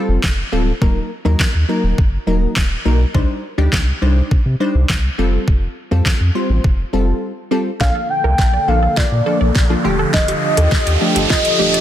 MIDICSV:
0, 0, Header, 1, 8, 480
1, 0, Start_track
1, 0, Key_signature, -2, "major"
1, 0, Tempo, 582524
1, 673, Time_signature, 4, 2, 24, 8
1, 9728, End_track
2, 0, Start_track
2, 0, Title_t, "Soft synth lead"
2, 0, Program_c, 0, 80
2, 6431, Note_on_c, 0, 77, 112
2, 6655, Note_off_c, 0, 77, 0
2, 6673, Note_on_c, 0, 79, 110
2, 7152, Note_on_c, 0, 77, 95
2, 7165, Note_off_c, 0, 79, 0
2, 7390, Note_on_c, 0, 74, 83
2, 7402, Note_off_c, 0, 77, 0
2, 8111, Note_off_c, 0, 74, 0
2, 8350, Note_on_c, 0, 75, 125
2, 9278, Note_off_c, 0, 75, 0
2, 9311, Note_on_c, 0, 75, 106
2, 9728, Note_off_c, 0, 75, 0
2, 9728, End_track
3, 0, Start_track
3, 0, Title_t, "Synth arpeggio sound"
3, 0, Program_c, 1, 84
3, 6432, Note_on_c, 1, 62, 91
3, 6537, Note_off_c, 1, 62, 0
3, 6551, Note_on_c, 1, 69, 80
3, 6657, Note_off_c, 1, 69, 0
3, 6791, Note_on_c, 1, 70, 81
3, 6897, Note_off_c, 1, 70, 0
3, 7032, Note_on_c, 1, 74, 83
3, 7137, Note_off_c, 1, 74, 0
3, 7272, Note_on_c, 1, 69, 73
3, 7377, Note_off_c, 1, 69, 0
3, 7393, Note_on_c, 1, 65, 89
3, 7498, Note_off_c, 1, 65, 0
3, 7632, Note_on_c, 1, 69, 82
3, 7737, Note_off_c, 1, 69, 0
3, 7752, Note_on_c, 1, 74, 78
3, 7857, Note_off_c, 1, 74, 0
3, 7992, Note_on_c, 1, 69, 73
3, 8098, Note_off_c, 1, 69, 0
3, 8111, Note_on_c, 1, 65, 80
3, 8217, Note_off_c, 1, 65, 0
3, 8233, Note_on_c, 1, 69, 78
3, 8338, Note_off_c, 1, 69, 0
3, 8353, Note_on_c, 1, 62, 91
3, 8458, Note_off_c, 1, 62, 0
3, 8473, Note_on_c, 1, 67, 76
3, 8578, Note_off_c, 1, 67, 0
3, 8713, Note_on_c, 1, 69, 76
3, 8818, Note_off_c, 1, 69, 0
3, 8952, Note_on_c, 1, 74, 83
3, 9057, Note_off_c, 1, 74, 0
3, 9193, Note_on_c, 1, 67, 69
3, 9298, Note_off_c, 1, 67, 0
3, 9311, Note_on_c, 1, 65, 93
3, 9417, Note_off_c, 1, 65, 0
3, 9551, Note_on_c, 1, 67, 82
3, 9657, Note_off_c, 1, 67, 0
3, 9672, Note_on_c, 1, 74, 78
3, 9728, Note_off_c, 1, 74, 0
3, 9728, End_track
4, 0, Start_track
4, 0, Title_t, "Analog synth pad"
4, 0, Program_c, 2, 89
4, 6429, Note_on_c, 2, 69, 75
4, 6431, Note_on_c, 2, 50, 83
4, 6431, Note_on_c, 2, 58, 70
4, 8094, Note_off_c, 2, 69, 0
4, 8095, Note_off_c, 2, 58, 0
4, 8112, Note_on_c, 2, 67, 76
4, 8113, Note_on_c, 2, 53, 78
4, 8113, Note_on_c, 2, 65, 74
4, 8115, Note_on_c, 2, 69, 86
4, 9728, Note_off_c, 2, 50, 0
4, 9728, Note_off_c, 2, 53, 0
4, 9728, Note_off_c, 2, 65, 0
4, 9728, Note_off_c, 2, 67, 0
4, 9728, Note_off_c, 2, 69, 0
4, 9728, End_track
5, 0, Start_track
5, 0, Title_t, "Synth stab"
5, 0, Program_c, 3, 62
5, 0, Note_on_c, 3, 55, 84
5, 0, Note_on_c, 3, 60, 77
5, 0, Note_on_c, 3, 65, 77
5, 0, Note_on_c, 3, 69, 98
5, 268, Note_off_c, 3, 55, 0
5, 269, Note_off_c, 3, 60, 0
5, 270, Note_off_c, 3, 65, 0
5, 270, Note_off_c, 3, 69, 0
5, 429, Note_on_c, 3, 55, 87
5, 430, Note_on_c, 3, 60, 77
5, 432, Note_on_c, 3, 65, 82
5, 434, Note_on_c, 3, 69, 98
5, 590, Note_off_c, 3, 55, 0
5, 590, Note_off_c, 3, 60, 0
5, 591, Note_off_c, 3, 65, 0
5, 592, Note_off_c, 3, 69, 0
5, 670, Note_on_c, 3, 54, 84
5, 672, Note_on_c, 3, 58, 83
5, 672, Note_on_c, 3, 63, 80
5, 674, Note_on_c, 3, 70, 94
5, 910, Note_off_c, 3, 54, 0
5, 910, Note_off_c, 3, 58, 0
5, 911, Note_off_c, 3, 63, 0
5, 912, Note_off_c, 3, 70, 0
5, 1029, Note_on_c, 3, 54, 88
5, 1030, Note_on_c, 3, 58, 78
5, 1032, Note_on_c, 3, 63, 81
5, 1033, Note_on_c, 3, 70, 96
5, 1269, Note_off_c, 3, 54, 0
5, 1270, Note_off_c, 3, 58, 0
5, 1270, Note_off_c, 3, 63, 0
5, 1271, Note_off_c, 3, 70, 0
5, 1389, Note_on_c, 3, 54, 83
5, 1391, Note_on_c, 3, 58, 81
5, 1392, Note_on_c, 3, 63, 78
5, 1394, Note_on_c, 3, 70, 92
5, 1709, Note_off_c, 3, 54, 0
5, 1709, Note_off_c, 3, 58, 0
5, 1710, Note_off_c, 3, 63, 0
5, 1711, Note_off_c, 3, 70, 0
5, 1869, Note_on_c, 3, 54, 85
5, 1871, Note_on_c, 3, 58, 77
5, 1872, Note_on_c, 3, 63, 76
5, 1873, Note_on_c, 3, 70, 92
5, 2188, Note_off_c, 3, 54, 0
5, 2189, Note_off_c, 3, 58, 0
5, 2190, Note_off_c, 3, 63, 0
5, 2191, Note_off_c, 3, 70, 0
5, 2349, Note_on_c, 3, 54, 87
5, 2350, Note_on_c, 3, 58, 79
5, 2352, Note_on_c, 3, 63, 83
5, 2353, Note_on_c, 3, 70, 96
5, 2510, Note_off_c, 3, 54, 0
5, 2511, Note_off_c, 3, 58, 0
5, 2511, Note_off_c, 3, 63, 0
5, 2512, Note_off_c, 3, 70, 0
5, 2589, Note_on_c, 3, 55, 87
5, 2590, Note_on_c, 3, 62, 79
5, 2591, Note_on_c, 3, 63, 80
5, 2593, Note_on_c, 3, 72, 96
5, 2829, Note_off_c, 3, 55, 0
5, 2830, Note_off_c, 3, 62, 0
5, 2830, Note_off_c, 3, 63, 0
5, 2831, Note_off_c, 3, 72, 0
5, 2949, Note_on_c, 3, 55, 86
5, 2951, Note_on_c, 3, 62, 78
5, 2953, Note_on_c, 3, 63, 84
5, 2953, Note_on_c, 3, 67, 99
5, 3189, Note_off_c, 3, 55, 0
5, 3190, Note_off_c, 3, 62, 0
5, 3191, Note_off_c, 3, 63, 0
5, 3191, Note_off_c, 3, 67, 0
5, 3309, Note_on_c, 3, 55, 86
5, 3311, Note_on_c, 3, 62, 79
5, 3312, Note_on_c, 3, 63, 78
5, 3313, Note_on_c, 3, 72, 90
5, 3629, Note_off_c, 3, 55, 0
5, 3629, Note_off_c, 3, 62, 0
5, 3630, Note_off_c, 3, 63, 0
5, 3631, Note_off_c, 3, 72, 0
5, 3792, Note_on_c, 3, 55, 88
5, 3793, Note_on_c, 3, 62, 79
5, 3794, Note_on_c, 3, 63, 79
5, 3796, Note_on_c, 3, 72, 94
5, 4110, Note_off_c, 3, 55, 0
5, 4111, Note_off_c, 3, 62, 0
5, 4111, Note_off_c, 3, 63, 0
5, 4112, Note_off_c, 3, 72, 0
5, 4271, Note_on_c, 3, 55, 97
5, 4272, Note_on_c, 3, 60, 81
5, 4273, Note_on_c, 3, 65, 84
5, 4275, Note_on_c, 3, 69, 101
5, 4752, Note_off_c, 3, 55, 0
5, 4753, Note_off_c, 3, 60, 0
5, 4753, Note_off_c, 3, 65, 0
5, 4754, Note_off_c, 3, 69, 0
5, 4872, Note_on_c, 3, 55, 89
5, 4873, Note_on_c, 3, 60, 80
5, 4875, Note_on_c, 3, 65, 83
5, 4875, Note_on_c, 3, 69, 100
5, 5111, Note_off_c, 3, 55, 0
5, 5111, Note_off_c, 3, 60, 0
5, 5112, Note_off_c, 3, 65, 0
5, 5112, Note_off_c, 3, 69, 0
5, 5231, Note_on_c, 3, 55, 87
5, 5232, Note_on_c, 3, 60, 77
5, 5233, Note_on_c, 3, 65, 78
5, 5235, Note_on_c, 3, 72, 96
5, 5549, Note_off_c, 3, 55, 0
5, 5550, Note_off_c, 3, 60, 0
5, 5550, Note_off_c, 3, 65, 0
5, 5552, Note_off_c, 3, 72, 0
5, 5710, Note_on_c, 3, 55, 85
5, 5711, Note_on_c, 3, 60, 78
5, 5713, Note_on_c, 3, 65, 78
5, 5714, Note_on_c, 3, 69, 94
5, 6029, Note_off_c, 3, 55, 0
5, 6030, Note_off_c, 3, 60, 0
5, 6030, Note_off_c, 3, 65, 0
5, 6031, Note_off_c, 3, 69, 0
5, 6188, Note_on_c, 3, 55, 88
5, 6190, Note_on_c, 3, 60, 81
5, 6191, Note_on_c, 3, 65, 78
5, 6193, Note_on_c, 3, 69, 93
5, 6349, Note_off_c, 3, 55, 0
5, 6350, Note_off_c, 3, 60, 0
5, 6351, Note_off_c, 3, 65, 0
5, 6352, Note_off_c, 3, 69, 0
5, 6429, Note_on_c, 3, 53, 76
5, 6430, Note_on_c, 3, 58, 72
5, 6432, Note_on_c, 3, 62, 69
5, 6433, Note_on_c, 3, 69, 83
5, 6907, Note_off_c, 3, 53, 0
5, 6908, Note_off_c, 3, 58, 0
5, 6909, Note_off_c, 3, 62, 0
5, 6909, Note_off_c, 3, 69, 0
5, 7149, Note_on_c, 3, 53, 74
5, 7151, Note_on_c, 3, 58, 66
5, 7153, Note_on_c, 3, 62, 67
5, 7154, Note_on_c, 3, 69, 84
5, 7469, Note_off_c, 3, 53, 0
5, 7470, Note_off_c, 3, 58, 0
5, 7471, Note_off_c, 3, 62, 0
5, 7471, Note_off_c, 3, 69, 0
5, 7630, Note_on_c, 3, 53, 73
5, 7631, Note_on_c, 3, 58, 69
5, 7633, Note_on_c, 3, 62, 69
5, 7634, Note_on_c, 3, 69, 79
5, 7870, Note_off_c, 3, 53, 0
5, 7870, Note_off_c, 3, 58, 0
5, 7871, Note_off_c, 3, 62, 0
5, 7872, Note_off_c, 3, 69, 0
5, 7991, Note_on_c, 3, 53, 94
5, 7992, Note_on_c, 3, 58, 78
5, 7994, Note_on_c, 3, 62, 83
5, 7995, Note_on_c, 3, 65, 96
5, 8100, Note_off_c, 3, 53, 0
5, 8110, Note_on_c, 3, 53, 92
5, 8112, Note_on_c, 3, 57, 88
5, 8113, Note_off_c, 3, 58, 0
5, 8113, Note_off_c, 3, 62, 0
5, 8113, Note_on_c, 3, 50, 89
5, 8114, Note_off_c, 3, 65, 0
5, 8114, Note_on_c, 3, 67, 108
5, 8879, Note_off_c, 3, 53, 0
5, 8880, Note_off_c, 3, 57, 0
5, 8881, Note_off_c, 3, 50, 0
5, 8882, Note_off_c, 3, 67, 0
5, 9069, Note_on_c, 3, 53, 87
5, 9071, Note_on_c, 3, 57, 80
5, 9073, Note_on_c, 3, 62, 84
5, 9073, Note_on_c, 3, 67, 101
5, 9389, Note_off_c, 3, 53, 0
5, 9390, Note_off_c, 3, 57, 0
5, 9390, Note_off_c, 3, 62, 0
5, 9391, Note_off_c, 3, 67, 0
5, 9549, Note_on_c, 3, 53, 77
5, 9550, Note_on_c, 3, 57, 70
5, 9552, Note_on_c, 3, 62, 67
5, 9553, Note_on_c, 3, 67, 84
5, 9728, Note_off_c, 3, 53, 0
5, 9728, Note_off_c, 3, 57, 0
5, 9728, Note_off_c, 3, 62, 0
5, 9728, Note_off_c, 3, 67, 0
5, 9728, End_track
6, 0, Start_track
6, 0, Title_t, "Sub bass"
6, 0, Program_c, 4, 38
6, 70, Note_on_c, 4, 29, 95
6, 151, Note_off_c, 4, 29, 0
6, 194, Note_on_c, 4, 29, 93
6, 353, Note_off_c, 4, 29, 0
6, 434, Note_on_c, 4, 26, 95
6, 593, Note_off_c, 4, 26, 0
6, 673, Note_on_c, 4, 27, 104
6, 832, Note_off_c, 4, 27, 0
6, 1034, Note_on_c, 4, 39, 97
6, 1113, Note_off_c, 4, 39, 0
6, 1150, Note_on_c, 4, 39, 45
6, 1199, Note_off_c, 4, 39, 0
6, 1273, Note_on_c, 4, 39, 87
6, 1353, Note_off_c, 4, 39, 0
6, 1513, Note_on_c, 4, 27, 90
6, 1593, Note_off_c, 4, 27, 0
6, 1634, Note_on_c, 4, 30, 95
6, 1793, Note_off_c, 4, 30, 0
6, 1871, Note_on_c, 4, 27, 89
6, 2031, Note_off_c, 4, 27, 0
6, 2113, Note_on_c, 4, 27, 97
6, 2272, Note_off_c, 4, 27, 0
6, 2353, Note_on_c, 4, 35, 83
6, 2512, Note_off_c, 4, 35, 0
6, 2592, Note_on_c, 4, 36, 107
6, 2672, Note_off_c, 4, 36, 0
6, 2951, Note_on_c, 4, 38, 93
6, 3031, Note_off_c, 4, 38, 0
6, 3070, Note_on_c, 4, 36, 93
6, 3231, Note_off_c, 4, 36, 0
6, 3313, Note_on_c, 4, 36, 85
6, 3472, Note_off_c, 4, 36, 0
6, 3554, Note_on_c, 4, 48, 51
6, 3601, Note_off_c, 4, 48, 0
6, 3672, Note_on_c, 4, 48, 96
6, 3752, Note_off_c, 4, 48, 0
6, 3913, Note_on_c, 4, 36, 95
6, 3993, Note_off_c, 4, 36, 0
6, 4034, Note_on_c, 4, 36, 97
6, 4193, Note_off_c, 4, 36, 0
6, 4273, Note_on_c, 4, 29, 90
6, 4432, Note_off_c, 4, 29, 0
6, 4513, Note_on_c, 4, 29, 107
6, 4672, Note_off_c, 4, 29, 0
6, 4873, Note_on_c, 4, 41, 91
6, 4953, Note_off_c, 4, 41, 0
6, 4991, Note_on_c, 4, 41, 44
6, 5039, Note_off_c, 4, 41, 0
6, 5111, Note_on_c, 4, 41, 96
6, 5191, Note_off_c, 4, 41, 0
6, 5352, Note_on_c, 4, 33, 88
6, 5432, Note_off_c, 4, 33, 0
6, 5474, Note_on_c, 4, 29, 95
6, 5633, Note_off_c, 4, 29, 0
6, 5714, Note_on_c, 4, 29, 85
6, 5873, Note_off_c, 4, 29, 0
6, 6432, Note_on_c, 4, 34, 99
6, 6512, Note_off_c, 4, 34, 0
6, 6793, Note_on_c, 4, 36, 89
6, 6872, Note_off_c, 4, 36, 0
6, 6910, Note_on_c, 4, 34, 89
6, 7070, Note_off_c, 4, 34, 0
6, 7152, Note_on_c, 4, 34, 89
6, 7312, Note_off_c, 4, 34, 0
6, 7394, Note_on_c, 4, 46, 48
6, 7442, Note_off_c, 4, 46, 0
6, 7512, Note_on_c, 4, 46, 96
6, 7592, Note_off_c, 4, 46, 0
6, 7754, Note_on_c, 4, 34, 99
6, 7833, Note_off_c, 4, 34, 0
6, 7874, Note_on_c, 4, 34, 90
6, 8033, Note_off_c, 4, 34, 0
6, 8114, Note_on_c, 4, 27, 92
6, 8273, Note_off_c, 4, 27, 0
6, 8353, Note_on_c, 4, 27, 106
6, 8512, Note_off_c, 4, 27, 0
6, 8712, Note_on_c, 4, 39, 98
6, 8792, Note_off_c, 4, 39, 0
6, 8830, Note_on_c, 4, 39, 46
6, 8879, Note_off_c, 4, 39, 0
6, 8951, Note_on_c, 4, 39, 94
6, 9032, Note_off_c, 4, 39, 0
6, 9192, Note_on_c, 4, 31, 89
6, 9272, Note_off_c, 4, 31, 0
6, 9314, Note_on_c, 4, 27, 98
6, 9473, Note_off_c, 4, 27, 0
6, 9553, Note_on_c, 4, 27, 91
6, 9712, Note_off_c, 4, 27, 0
6, 9728, End_track
7, 0, Start_track
7, 0, Title_t, "Riser"
7, 0, Program_c, 5, 103
7, 6432, Note_on_c, 5, 60, 80
7, 9728, Note_off_c, 5, 60, 0
7, 9728, End_track
8, 0, Start_track
8, 0, Title_t, "Drums"
8, 193, Note_on_c, 9, 39, 120
8, 194, Note_on_c, 9, 36, 117
8, 200, Note_on_c, 9, 38, 91
8, 276, Note_off_c, 9, 39, 0
8, 277, Note_off_c, 9, 36, 0
8, 283, Note_off_c, 9, 38, 0
8, 673, Note_on_c, 9, 36, 105
8, 755, Note_off_c, 9, 36, 0
8, 1150, Note_on_c, 9, 36, 118
8, 1153, Note_on_c, 9, 39, 123
8, 1160, Note_on_c, 9, 38, 104
8, 1233, Note_off_c, 9, 36, 0
8, 1236, Note_off_c, 9, 39, 0
8, 1242, Note_off_c, 9, 38, 0
8, 1634, Note_on_c, 9, 36, 110
8, 1716, Note_off_c, 9, 36, 0
8, 2112, Note_on_c, 9, 39, 117
8, 2113, Note_on_c, 9, 36, 122
8, 2119, Note_on_c, 9, 38, 92
8, 2194, Note_off_c, 9, 39, 0
8, 2196, Note_off_c, 9, 36, 0
8, 2201, Note_off_c, 9, 38, 0
8, 2593, Note_on_c, 9, 36, 104
8, 2675, Note_off_c, 9, 36, 0
8, 3070, Note_on_c, 9, 36, 122
8, 3072, Note_on_c, 9, 39, 124
8, 3079, Note_on_c, 9, 38, 97
8, 3153, Note_off_c, 9, 36, 0
8, 3155, Note_off_c, 9, 39, 0
8, 3162, Note_off_c, 9, 38, 0
8, 3554, Note_on_c, 9, 36, 107
8, 3637, Note_off_c, 9, 36, 0
8, 4033, Note_on_c, 9, 39, 119
8, 4034, Note_on_c, 9, 36, 119
8, 4040, Note_on_c, 9, 38, 96
8, 4116, Note_off_c, 9, 36, 0
8, 4116, Note_off_c, 9, 39, 0
8, 4122, Note_off_c, 9, 38, 0
8, 4513, Note_on_c, 9, 36, 106
8, 4595, Note_off_c, 9, 36, 0
8, 4990, Note_on_c, 9, 36, 119
8, 4993, Note_on_c, 9, 39, 117
8, 5000, Note_on_c, 9, 38, 101
8, 5073, Note_off_c, 9, 36, 0
8, 5075, Note_off_c, 9, 39, 0
8, 5082, Note_off_c, 9, 38, 0
8, 5474, Note_on_c, 9, 36, 111
8, 5557, Note_off_c, 9, 36, 0
8, 6432, Note_on_c, 9, 36, 101
8, 6432, Note_on_c, 9, 38, 51
8, 6514, Note_off_c, 9, 38, 0
8, 6515, Note_off_c, 9, 36, 0
8, 6910, Note_on_c, 9, 36, 120
8, 6913, Note_on_c, 9, 38, 55
8, 6992, Note_off_c, 9, 36, 0
8, 6996, Note_off_c, 9, 38, 0
8, 7393, Note_on_c, 9, 38, 62
8, 7394, Note_on_c, 9, 36, 110
8, 7475, Note_off_c, 9, 38, 0
8, 7476, Note_off_c, 9, 36, 0
8, 7872, Note_on_c, 9, 38, 64
8, 7874, Note_on_c, 9, 36, 119
8, 7955, Note_off_c, 9, 38, 0
8, 7956, Note_off_c, 9, 36, 0
8, 8353, Note_on_c, 9, 36, 101
8, 8353, Note_on_c, 9, 38, 69
8, 8435, Note_off_c, 9, 36, 0
8, 8435, Note_off_c, 9, 38, 0
8, 8473, Note_on_c, 9, 42, 53
8, 8556, Note_off_c, 9, 42, 0
8, 8712, Note_on_c, 9, 42, 58
8, 8795, Note_off_c, 9, 42, 0
8, 8830, Note_on_c, 9, 36, 124
8, 8833, Note_on_c, 9, 38, 74
8, 8913, Note_off_c, 9, 36, 0
8, 8915, Note_off_c, 9, 38, 0
8, 8955, Note_on_c, 9, 42, 53
8, 9038, Note_off_c, 9, 42, 0
8, 9195, Note_on_c, 9, 42, 69
8, 9278, Note_off_c, 9, 42, 0
8, 9313, Note_on_c, 9, 38, 81
8, 9315, Note_on_c, 9, 36, 109
8, 9396, Note_off_c, 9, 38, 0
8, 9397, Note_off_c, 9, 36, 0
8, 9433, Note_on_c, 9, 42, 53
8, 9516, Note_off_c, 9, 42, 0
8, 9676, Note_on_c, 9, 42, 86
8, 9728, Note_off_c, 9, 42, 0
8, 9728, End_track
0, 0, End_of_file